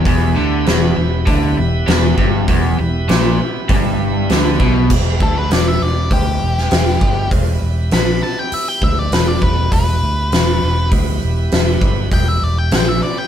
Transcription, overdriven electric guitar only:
0.06 E2
0.36 D3
0.67 E2
0.97 E2
1.27 D3
1.57 E2
1.88 E2
2.18 G2
2.49 E2
2.79 E2
3.09 A#2
3.69 G2
4.30 D3
4.60 B2

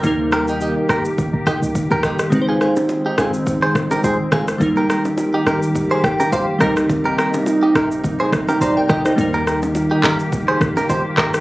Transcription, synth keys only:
0.01 G3 A#3 D#4
0.06 A#4
2.30 G#3 C4 D#4
2.35 B4
2.42 C5
4.58 G3 A#3 D#4
4.63 A#4
6.04 G5
6.32 F5
6.59 G3 C4 D#4 D#5
6.63 A#4
8.61 D5 A#5
8.77 A#4 G5
8.90 G4 D#5
9.05 D#4 C5
9.16 G3 A#3 D#4
9.21 A#4

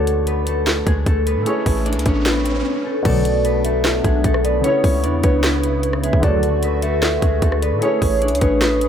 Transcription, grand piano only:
Already playing: D3 D4 F#4 C#5
1.43 A3 E4
1.47 G#4 C#5
3.03 B2 B3
3.07 F#4 D5
4.61 C#3 B3
4.65 E4 C#5
6.20 D3 D4
6.24 F#4 D5
7.79 A3 E4
7.83 G#4 C#5

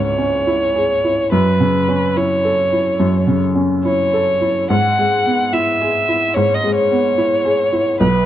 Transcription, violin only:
0.06 C#5
1.32 B4
2.17 C#5
3.85 C#5
4.71 F#5
5.53 E5
6.34 C#5
6.54 D#5
6.75 C#5
8.01 B4

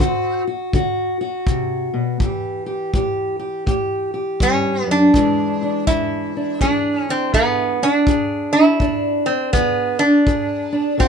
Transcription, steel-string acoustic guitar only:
0.00 D3 F#4
0.47 F#4
0.74 D3 F#4
1.21 F#4
1.47 C3
1.94 B2
2.21 A2 E3 G4
2.66 G4
2.94 A2 G4
3.39 G4
3.66 A2 G4
4.14 G4
4.41 G2
4.87 F#2
5.14 E2 E3 G#3 D4 G#4
5.63 D4
5.87 E2 D4
6.37 D4
6.63 E2 G#4
7.09 D4
7.36 E2 G#4
7.82 D4
8.07 E2 G#4
8.55 D4
8.81 E2 D4
9.29 D4
9.54 E2 G#4
10.00 D4
10.27 E2 G#4
10.72 D4
10.98 D3 F#4

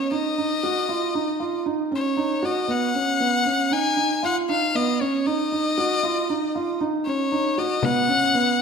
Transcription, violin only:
Already playing: C#5
0.12 D#5
1.95 C#5
2.45 D#5
2.71 F#5
3.73 G#5
4.25 F#5
4.50 F5
4.76 D#5
5.01 C#5
5.27 D#5
7.06 C#5
7.58 D#5
7.84 F#5

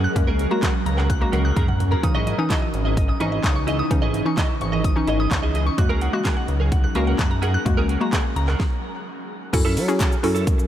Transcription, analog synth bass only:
0.16 F#2
0.28 C#2
0.86 C#2
1.33 C#2
1.57 F#2
2.03 C#2
2.15 G#1
2.74 G#1
3.21 G#1
3.44 C#2
3.91 C#2
4.03 G#1
4.61 G#1
5.08 G#1
5.31 C#2
5.78 F#2
5.90 C#2
6.49 C#2
6.96 C#2
7.19 F#2
7.66 F#2
7.78 C#2
8.36 C#2
9.53 F#2
9.77 F#3
10.24 F#2

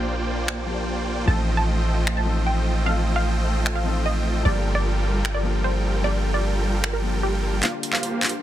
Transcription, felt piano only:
Already playing: F3 A#3 D4 G4
0.66 F3 A#3 D4 G4
1.26 F3 C4 D#4 A4
2.25 F3 C4 D#4 A4
2.85 F3 C4 D#4 A4
3.84 F3 C4 D#4
3.88 A4
4.43 F3 A#3 D4
4.47 G4
5.43 F3 A#3 D4 G4
6.02 F3 A#3 D4 G4
7.02 F3 A#3 D4 G4
7.61 D3 G3 A#3
7.65 F4

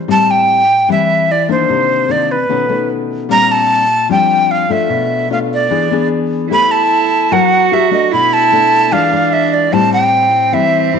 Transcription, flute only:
0.11 A5
0.31 G5
0.92 E5
1.31 D5
1.51 C5
2.11 D5
2.32 B4
3.31 A#5
3.52 A5
4.12 G5
4.51 F5
4.72 E5
5.33 F5
5.54 D5
6.53 B5
6.71 A5
7.33 F#5
7.73 E5
7.93 D#5
8.13 B5
8.33 A5
8.92 F5
9.33 E5
9.54 D5
9.73 A5
9.93 G5
10.53 E5

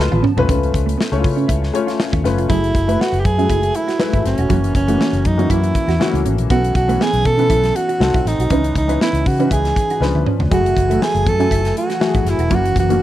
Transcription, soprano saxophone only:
2.49 E4
3.01 F#4
3.20 G4
3.25 G#4
3.76 E4
4.26 C#4
4.76 C#4
5.27 D#4
5.50 E4
6.51 F#4
6.76 F#4
7.02 G#4
7.26 A4
7.76 F#4
8.28 D#4
8.77 D#4
9.02 E4
9.27 F#4
9.53 G#4
10.53 F#4
11.03 G#4
11.28 A4
11.78 F#4
12.29 E4
12.55 F#4
12.79 F#4

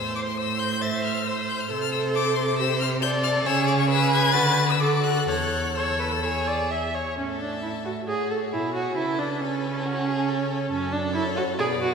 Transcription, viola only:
Already playing: C5
0.38 C5
0.81 E5
1.26 C5
1.71 A4
2.59 G4
3.03 D5
3.46 C#5
3.90 B4
4.81 A4
5.29 C#5
5.76 C#5
6.00 B4
6.12 A4
6.23 C#5
6.47 D5
6.71 E5
6.95 C#5
7.18 C#4
7.41 D4
7.62 E4
7.85 F#4
8.07 G#4
8.30 A4
8.52 E4
8.74 F#4
8.97 E4
9.19 D4
9.41 C#4
10.71 C#4
10.92 D4
11.14 E4
11.37 F#4
11.59 G#4
11.81 F#4

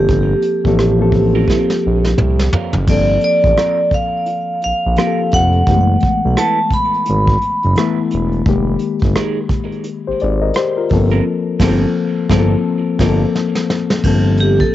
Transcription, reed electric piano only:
Already playing: F3 A#3 C4 A4
0.64 F3 A#3 C4 A4
0.98 F3 A#3 C4 A4
2.88 F3 A#3 C4 A4
4.97 F3 A#3 C4 G4
5.07 A4
5.67 E3 A3 B3 G4
5.77 G#3
7.76 E3 A3 B3 E4
8.46 D#3 G#3 A#3 G4
10.07 G4 C5
10.22 G#4 D5
10.42 A#4 D#5
10.57 G4 C5
10.77 F4 A#4
10.90 F3 A#3 C4 A4
11.60 F3 A#3 C4 A4
12.30 F3 A#3 C4
12.39 A4
12.99 F3 A#3 C4
13.09 A4
14.04 F3 A#3 C4 A4

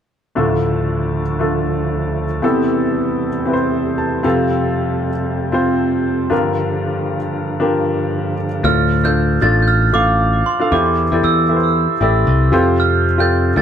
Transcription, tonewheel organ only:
0.36 D2 D3 F3 A3
2.43 E2 C3 G3
4.24 F2
6.32 G2 D3 F3 A#3

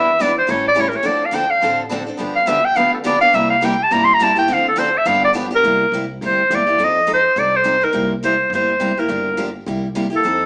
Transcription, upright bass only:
Already playing: E2
0.49 A1
1.06 D2
1.63 A1
2.20 G1
2.77 D2
3.34 C2
3.91 G1
4.48 D2
5.06 G1
5.64 C2
5.92 C2
6.21 D2
6.50 E2
6.79 F2
7.36 C2
7.94 C2
8.50 G1
9.08 G1
9.67 C2
10.25 F2

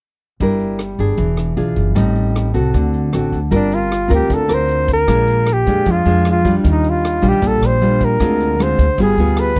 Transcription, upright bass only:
0.40 G1
0.99 G1
1.18 E1
1.57 B1
1.76 F#1
1.96 A1
2.55 C2
2.74 D2
3.14 A1
3.32 D2
3.52 G1
4.10 D2
4.30 D2
4.50 D2
5.08 A#1
5.66 F2
5.86 F2
6.06 F2
6.64 D#2
7.23 A#1
7.42 A#1
7.61 A#1
8.20 D2
8.79 D2
8.98 G1
9.17 D2

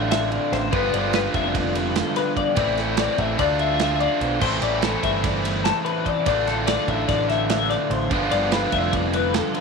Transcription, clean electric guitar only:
0.11 E5
0.31 D5
0.53 C5
0.73 B4
0.93 D5
1.14 B4
1.35 E5
1.55 D5
1.75 B4
1.96 A4
2.17 B4
2.37 D5
2.57 D5
2.78 A4
2.99 D5
3.19 E5
3.39 D5
3.60 E5
3.81 E5
4.00 D5
4.21 C5
4.42 C5
4.62 D5
4.83 A4
5.03 E5
5.24 D5
5.44 B4
5.64 A4
5.85 B4
6.06 D5
6.27 D5
6.47 A4
6.67 D5
6.88 E5
7.08 D5
7.29 E5
7.50 E5
7.70 D5
7.90 C5
8.11 B4
8.31 D5
8.52 B4
8.73 E5
8.93 D5
9.14 B4
9.35 A4
9.55 B4

